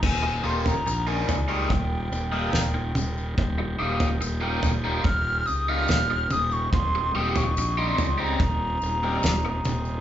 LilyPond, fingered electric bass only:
\new Staff \with { instrumentName = "Fingered electric bass" } { \clef bass \time 4/4 \key ees \mixolydian \tempo 4 = 72 ees,,8 ees,,8 bes,,8 des,8 ees,,8 ees,,8 ees,,8 ees,,8 | ees,,8 ees,,8 ees,,8 ees,,8 ees,,8 des,8 ees,,8 ees,,8 | ees,,8 ees,,8 bes,,8 des,8 ees,,8 ees,,8 ees,,8 ees,,8 | }